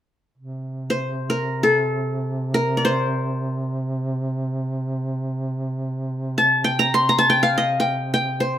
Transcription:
0.38 duduk C3
0.90 qanun C5
1.30 qanun A#4
1.63 qanun A4
2.54 qanun A#4
2.77 qanun D5
2.85 qanun C5
6.38 qanun A5
6.64 qanun G5
6.79 qanun A#5
6.94 qanun C6
7.09 qanun A#5
7.18 qanun A5
7.30 qanun G5
7.43 qanun F5
7.58 qanun D#5
7.80 qanun G5
8.14 qanun G5
8.40 qanun C5

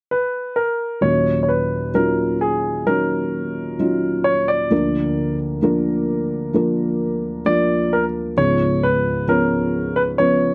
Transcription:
0.11 grand piano B4
0.56 grand piano A#4
1.01 felt piano D#2 A#2 F#3 C#4 D#4 C#5, grand piano C#5
1.43 grand piano C#5
1.49 grand piano B4
1.94 felt piano F#3 C#4 D#4 F4, grand piano A#4
2.41 grand piano G#4
2.86 felt piano F#3 C#4 D#4 C#5, grand piano A#4
3.79 felt piano F#3 C#4 D#4 F4
4.24 grand piano C#5
4.48 grand piano D5
4.70 felt piano D2 D3 F3 A#3 D4 A#4
5.62 felt piano F3 A#3 D4 A#4
6.54 felt piano F3 A#3 D4 A#4
7.45 felt piano F3 A#3 D4 F4, grand piano D5
7.93 grand piano A#4
8.37 felt piano C#2 G#2 F3 B3 C#4 G#4, grand piano C#5
8.83 grand piano B4
9.27 felt piano F3 B3 C#4 C#5, grand piano A#4
9.96 grand piano B4
10.18 felt piano F3 B3 C#4 B4, grand piano C#5

